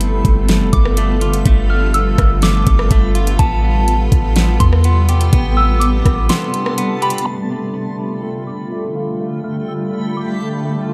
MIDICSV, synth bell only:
0, 0, Header, 1, 2, 480
1, 0, Start_track
1, 0, Tempo, 483871
1, 1445, Time_signature, 4, 2, 24, 8
1, 10849, End_track
2, 0, Start_track
2, 0, Title_t, "Synth bell"
2, 0, Program_c, 0, 98
2, 0, Note_on_c, 0, 83, 109
2, 679, Note_off_c, 0, 83, 0
2, 722, Note_on_c, 0, 86, 85
2, 1404, Note_off_c, 0, 86, 0
2, 1685, Note_on_c, 0, 89, 74
2, 1913, Note_off_c, 0, 89, 0
2, 1926, Note_on_c, 0, 88, 81
2, 2376, Note_off_c, 0, 88, 0
2, 2409, Note_on_c, 0, 86, 96
2, 2858, Note_off_c, 0, 86, 0
2, 3363, Note_on_c, 0, 81, 103
2, 4524, Note_off_c, 0, 81, 0
2, 4562, Note_on_c, 0, 84, 77
2, 5244, Note_off_c, 0, 84, 0
2, 5524, Note_on_c, 0, 88, 90
2, 5751, Note_on_c, 0, 86, 79
2, 5752, Note_off_c, 0, 88, 0
2, 6209, Note_off_c, 0, 86, 0
2, 6244, Note_on_c, 0, 84, 89
2, 6925, Note_off_c, 0, 84, 0
2, 6968, Note_on_c, 0, 83, 90
2, 7182, Note_off_c, 0, 83, 0
2, 7194, Note_on_c, 0, 83, 97
2, 8360, Note_off_c, 0, 83, 0
2, 8402, Note_on_c, 0, 86, 75
2, 9084, Note_off_c, 0, 86, 0
2, 9365, Note_on_c, 0, 89, 71
2, 9593, Note_off_c, 0, 89, 0
2, 9606, Note_on_c, 0, 88, 82
2, 10057, Note_off_c, 0, 88, 0
2, 10086, Note_on_c, 0, 86, 90
2, 10537, Note_off_c, 0, 86, 0
2, 10849, End_track
0, 0, End_of_file